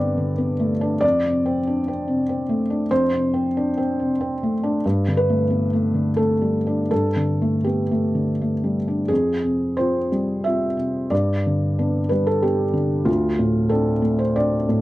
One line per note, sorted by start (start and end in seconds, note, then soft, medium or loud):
0.00 0.98 G2 medium
0.00 0.17 D3 soft
0.00 0.38 B3 soft
0.00 1.05 C4 soft
0.00 1.05 B4 medium
0.00 0.70 D5 medium
0.17 0.51 D3 soft
0.38 0.72 B3 soft
0.59 0.94 A3 soft
0.81 1.02 D4 medium
1.01 2.86 F2 medium
1.01 2.89 D5 medium
1.25 1.58 C3 soft
1.46 1.79 C4 medium
1.67 1.88 D4 soft
1.88 2.20 C4 soft
2.08 2.41 C3 soft
2.29 2.61 C4 soft
2.49 2.82 A3 soft
2.70 3.03 D4 soft
2.91 4.80 F2 medium
2.91 4.84 C5 medium
3.13 3.46 C3 soft
3.34 3.68 C4 soft
3.57 3.77 D4 soft
3.77 4.11 C4 soft
4.00 4.33 C3 soft
4.21 4.54 C4 soft
4.43 4.76 A3 soft
4.63 4.84 D4 soft
4.86 6.88 G2 medium
5.08 5.42 D3 soft
5.17 6.18 B4 medium
5.30 5.64 A3 soft
5.50 5.72 B3 soft
5.73 6.09 A3 soft
5.94 6.32 D3 soft
6.17 6.57 A3 soft
6.17 6.89 A4 medium
6.42 6.81 G3 soft
6.67 7.06 D4 soft
6.91 9.06 G2 soft
6.91 7.65 A4 medium
7.16 7.56 D3 soft
7.42 7.81 A3 soft
7.64 7.91 B3 soft
7.64 8.74 G4 soft
7.91 8.30 A3 soft
8.15 8.53 D3 soft
8.41 8.79 A3 soft
8.64 9.01 G3 soft
8.88 9.10 D4 soft
9.08 11.07 F2 medium
9.08 9.77 G#4 medium
9.44 9.98 C3 soft
9.77 10.08 C4 soft
9.77 10.09 F4 soft
9.77 10.44 C5 medium
10.12 10.65 G3 soft
10.44 10.75 C4 soft
10.44 10.75 F4 soft
10.44 11.11 E5 medium
10.77 11.11 C3 soft
11.10 13.04 G2 medium
11.10 12.10 D5 medium
11.47 11.99 D3 soft
11.79 12.08 B3 soft
11.79 12.08 D4 soft
12.09 12.63 G3 soft
12.09 12.26 B4 medium
12.27 12.43 A4 medium
12.42 12.72 B3 soft
12.42 12.73 D4 soft
12.42 13.07 G4 medium
12.73 13.07 D3 soft
13.05 14.81 D2 medium
13.05 13.71 F4 medium
13.39 13.91 A2 soft
13.69 14.00 C4 soft
13.69 14.01 D4 soft
13.69 14.19 A4 medium
14.02 14.56 A3 soft
14.19 14.36 C5 medium
14.36 14.66 C4 soft
14.36 14.66 D4 soft
14.36 14.81 D5 medium
14.69 14.81 A2 soft